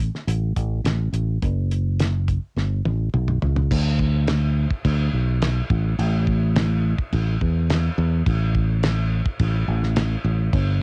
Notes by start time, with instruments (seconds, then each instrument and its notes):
0.00 closed hi-hat
0.15 snare
0.27 fingered electric bass A1, closed hi-hat
0.56 fingered electric bass A1, kick, closed hi-hat
0.84 fingered electric bass A1, snare, closed hi-hat
1.12 fingered electric bass A1, closed hi-hat
1.42 fingered electric bass F#1, kick, closed hi-hat
1.71 closed hi-hat
2.00 snare, closed hi-hat
2.28 kick, closed hi-hat
2.56 fingered electric bass G1, snare
2.85 fingered electric bass A1, high tom
3.14 fingered electric bass B1, mid tom
3.28 mid tom
3.42 fingered electric bass C#2, floor tom
3.56 floor tom
3.71 fingered electric bass D2, kick, crash
3.99 kick
4.27 snare, crash
4.71 kick
4.85 fingered electric bass D2, kick, crash
5.13 fingered electric bass B1
5.42 snare, crash
5.70 fingered electric bass A1, kick
5.99 fingered electric bass A1, crash
6.27 kick
6.56 snare, crash
6.98 kick
7.13 fingered electric bass A1, kick, crash
7.41 fingered electric bass E2, kick
7.70 snare, crash
7.98 fingered electric bass E2
8.26 fingered electric bass A1, kick, crash
8.55 kick
8.83 snare, crash
9.26 kick
9.39 fingered electric bass A1, kick, crash
9.68 fingered electric bass A1
9.83 snare
9.96 snare, crash
10.25 fingered electric bass A1
10.53 fingered electric bass G1, kick, crash